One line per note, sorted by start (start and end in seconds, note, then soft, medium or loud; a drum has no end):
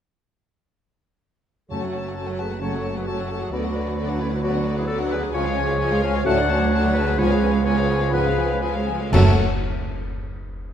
1.69 3.50 F#1 soft
1.69 2.36 F#2 medium
1.69 3.51 F#2 soft
1.69 1.86 C#3 soft
1.69 1.86 F#3 soft
1.69 2.59 F#3 soft
1.69 1.82 A3 soft
1.69 1.86 C#4 soft
1.69 1.82 C#4 soft
1.69 1.86 F#4 soft
1.69 2.35 F#4 soft
1.69 2.40 A4 medium
1.69 2.58 C#5 soft
1.69 1.81 A5 soft
1.82 1.94 F#3 soft
1.82 1.94 A3 soft
1.82 1.94 F#5 soft
1.94 2.06 A3 soft
1.94 2.05 C#4 soft
1.94 2.05 A5 soft
2.04 2.17 F#3 soft
2.04 2.16 A3 soft
2.04 2.17 F#5 soft
2.15 2.28 A3 soft
2.15 2.27 C#4 soft
2.15 2.27 A5 soft
2.27 2.40 F#3 soft
2.27 2.39 A3 soft
2.27 2.39 F#5 soft
2.39 2.52 A3 soft
2.39 2.51 C#4 soft
2.39 2.45 G#4 soft
2.39 2.61 B4 medium
2.39 2.51 A5 soft
2.50 2.63 F#3 soft
2.50 2.62 A3 soft
2.50 2.62 F#5 soft
2.60 2.77 C#3 soft
2.60 2.78 F#3 soft
2.60 3.07 F#3 soft
2.60 2.73 A3 soft
2.60 2.77 C#4 soft
2.60 2.72 C#4 soft
2.60 2.78 F#4 soft
2.60 2.96 A4 medium
2.60 2.98 C#5 medium
2.60 3.06 C#5 soft
2.60 2.72 A5 soft
2.71 2.86 F#3 soft
2.71 2.84 A3 soft
2.71 2.85 F#5 soft
2.82 2.96 C#4 soft
2.82 2.95 A5 soft
2.87 2.97 A3 soft
2.95 3.09 F#3 soft
2.95 3.07 A3 soft
2.95 3.08 G#4 soft
2.95 3.09 B4 medium
2.95 3.07 F#5 soft
3.07 3.51 F#3 soft
3.07 3.19 A3 soft
3.07 3.19 C#4 soft
3.07 3.42 F#4 medium
3.07 3.44 A4 medium
3.07 3.52 C#5 soft
3.07 3.18 A5 soft
3.18 3.31 F#3 soft
3.18 3.31 A3 soft
3.18 3.30 F#5 soft
3.29 3.42 A3 soft
3.29 3.42 C#4 soft
3.29 3.41 A5 soft
3.42 3.53 F#3 soft
3.42 3.53 A3 soft
3.42 3.54 E4 soft
3.42 3.52 G#4 medium
3.42 3.53 F#5 soft
3.52 5.31 D2 medium
3.52 3.64 D3 soft
3.52 3.70 D3 soft
3.52 4.41 F#3 soft
3.52 3.71 F#3 soft
3.52 3.69 B3 soft
3.52 3.64 B3 soft
3.52 4.21 D4 medium
3.52 4.19 F#4 medium
3.52 3.69 F#4 soft
3.52 4.42 B4 soft
3.52 3.64 D5 soft
3.63 3.77 F#3 soft
3.63 3.77 D4 soft
3.63 3.76 F#5 soft
3.75 3.88 D3 soft
3.75 3.87 B3 soft
3.75 3.87 D5 soft
3.86 3.99 F#3 soft
3.86 3.99 D4 soft
3.86 3.98 F#5 soft
3.98 4.09 D3 soft
3.98 4.09 B3 soft
3.98 4.09 D5 soft
4.08 4.21 F#3 soft
4.08 4.20 D4 soft
4.08 4.21 F#5 soft
4.20 4.32 D3 soft
4.20 4.32 B3 soft
4.20 4.26 C#4 medium
4.20 4.42 E4 medium
4.20 4.32 D5 soft
4.31 4.44 F#3 soft
4.31 4.43 D4 soft
4.31 4.43 F#5 soft
4.43 4.54 D3 soft
4.43 4.59 D3 medium
4.43 4.59 F#3 medium
4.43 5.35 F#3 medium
4.43 4.54 B3 medium
4.43 4.60 B3 medium
4.43 4.77 D4 medium
4.43 4.77 F#4 medium
4.43 4.60 F#4 medium
4.43 5.37 B4 medium
4.43 4.54 D5 medium
4.53 4.67 F#3 soft
4.53 4.67 D4 soft
4.53 4.66 F#5 soft
4.65 4.78 D3 medium
4.65 4.78 B3 soft
4.65 4.77 D5 medium
4.76 4.89 F#3 soft
4.76 4.89 D4 soft
4.76 4.83 E4 medium
4.76 4.86 G#4 medium
4.76 4.88 F#5 medium
4.87 5.00 D3 medium
4.87 5.00 B3 medium
4.87 5.12 F#4 medium
4.87 4.98 A4 medium
4.87 4.99 D5 medium
5.00 5.12 F#3 soft
5.00 5.12 D4 medium
5.00 5.12 F#5 medium
5.11 5.23 D3 medium
5.11 5.24 B3 medium
5.11 5.35 G#4 medium
5.11 5.21 B4 medium
5.11 5.23 D5 medium
5.21 5.34 F#3 medium
5.21 5.35 D4 medium
5.21 5.34 F#5 medium
5.32 6.24 C#2 medium
5.32 5.50 C#3 medium
5.32 6.26 F3 medium
5.32 5.45 F3 medium
5.32 5.51 G#3 medium
5.32 5.49 C#4 medium
5.32 5.45 C#4 medium
5.32 5.50 F4 medium
5.32 6.03 G#4 medium
5.32 6.01 C#5 loud
5.32 6.24 C#5 medium
5.32 5.44 G#5 medium
5.45 5.57 G#3 soft
5.45 5.57 F4 medium
5.45 5.57 F5 medium
5.56 5.69 F3 medium
5.56 5.69 C#4 medium
5.56 5.68 G#5 medium
5.68 5.80 G#3 medium
5.68 5.80 F4 medium
5.68 5.80 F5 medium
5.79 5.91 F3 medium
5.79 5.90 C#4 medium
5.79 5.91 G#5 medium
5.91 6.03 G#3 medium
5.91 6.03 F4 medium
5.91 6.03 F5 medium
6.03 6.14 F3 medium
6.03 6.15 C#4 medium
6.03 6.26 C#5 medium
6.03 6.25 F5 medium
6.03 6.15 G#5 medium
6.14 6.26 G#3 medium
6.14 6.26 F4 medium
6.14 6.26 F5 medium
6.24 7.16 D2 medium
6.24 6.41 A2 medium
6.24 7.16 F#3 medium
6.24 6.36 A3 medium
6.24 6.42 A3 medium
6.24 6.41 C#4 medium
6.24 6.37 C#4 medium
6.24 6.41 F#4 medium
6.24 7.19 C#5 medium
6.24 6.65 D5 medium
6.24 6.92 F#5 loud
6.24 6.37 A5 medium
6.37 6.49 F#3 medium
6.37 6.49 D4 medium
6.37 6.49 F#5 medium
6.49 6.60 A3 medium
6.49 6.60 C#4 medium
6.49 6.60 A5 medium
6.59 6.71 F#3 medium
6.59 6.72 D4 medium
6.59 6.72 F#5 medium
6.71 6.82 A3 medium
6.71 6.82 C#4 medium
6.71 6.83 A5 medium
6.82 6.95 F#3 medium
6.82 6.94 D4 medium
6.82 6.95 F#5 medium
6.93 7.06 A3 medium
6.93 7.06 C#4 medium
6.93 7.17 G#4 medium
6.93 7.20 B4 loud
6.97 7.08 A5 medium
7.05 7.17 F#3 medium
7.05 7.17 D4 medium
7.05 7.19 F#5 medium
7.16 8.91 C#2 medium
7.16 7.34 G#2 medium
7.16 7.29 F3 medium
7.16 7.51 F3 medium
7.16 7.28 B3 medium
7.16 7.34 B3 medium
7.16 7.34 C#4 medium
7.16 7.34 F4 medium
7.16 7.64 G#4 medium
7.16 7.64 B4 medium
7.16 7.64 C#5 medium
7.16 7.30 G#5 medium
7.28 7.41 G#3 medium
7.28 7.41 C#4 medium
7.28 7.42 F5 medium
7.41 7.53 F3 medium
7.41 7.53 B3 medium
7.41 7.53 G#5 medium
7.53 7.65 G#3 medium
7.53 7.65 C#4 medium
7.53 7.65 F5 medium
7.64 8.12 F3 medium
7.64 7.76 F3 medium
7.64 7.76 B3 medium
7.64 8.12 G#4 medium
7.64 8.11 B4 medium
7.64 8.12 C#5 loud
7.64 7.76 G#5 medium
7.77 7.89 G#3 medium
7.77 7.89 C#4 medium
7.77 7.89 F5 medium
7.88 8.01 F3 medium
7.88 8.00 B3 medium
7.88 8.01 G#5 medium
8.00 8.13 G#3 medium
8.00 8.13 C#4 medium
8.00 8.13 F5 medium
8.11 8.30 G#2 medium
8.11 8.61 F3 medium
8.11 8.25 F3 medium
8.11 8.30 B3 medium
8.11 8.24 B3 medium
8.11 8.29 C#4 medium
8.11 8.29 F4 medium
8.11 8.61 G#4 medium
8.11 8.60 B4 medium
8.11 8.61 B4 loud
8.11 8.24 G#5 medium
8.25 8.38 G#3 medium
8.25 8.38 C#4 medium
8.25 8.38 F5 medium
8.38 8.50 F3 medium
8.38 8.50 B3 medium
8.38 8.50 G#5 medium
8.48 8.63 G#3 soft
8.48 8.62 C#4 soft
8.48 8.61 F5 medium
8.61 8.88 F3 medium
8.61 8.75 F3 soft
8.61 8.75 B3 medium
8.61 9.14 F4 medium
8.61 9.12 G#4 medium
8.61 8.73 B4 medium
8.61 8.74 G#5 medium
8.74 8.89 G#3 soft
8.74 8.88 C#4 soft
8.74 8.87 F5 medium
8.87 9.01 F3 medium
8.87 9.01 B3 soft
8.87 9.00 G#5 soft
8.99 9.13 G#3 soft
8.99 9.14 C#4 soft
8.99 9.12 F5 soft
9.12 9.41 F#1 medium
9.12 9.33 F#2 medium
9.12 9.36 F#2 medium
9.12 9.41 F#2 medium
9.12 9.34 F#3 medium
9.12 9.33 A3 medium
9.12 9.41 A3 medium
9.12 9.34 C#4 medium
9.12 9.34 F#4 medium
9.12 9.33 A4 medium
9.12 9.42 C#5 medium
9.12 9.41 F#5 medium
9.12 9.34 A5 medium
9.12 9.41 A5 medium
9.12 concert bass drum medium
9.12 crash medium